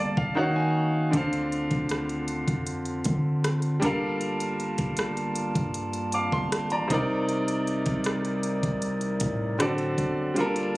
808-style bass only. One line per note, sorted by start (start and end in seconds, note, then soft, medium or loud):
0.00 0.16 G1 medium
0.17 0.36 D#2 loud
1.13 1.69 D2 loud
1.71 2.45 D2 loud
2.48 3.03 F2 medium
3.06 3.79 D3 medium
3.82 4.75 G1 medium
4.79 4.97 G1 medium
4.98 5.53 G1 loud
5.55 6.29 G2 medium
6.32 6.72 G1 loud
6.71 6.89 A1 medium
6.90 7.83 C2 loud
7.86 8.60 C2 medium
8.63 9.19 C2 medium
9.21 9.95 A2 medium
9.98 10.77 G1 medium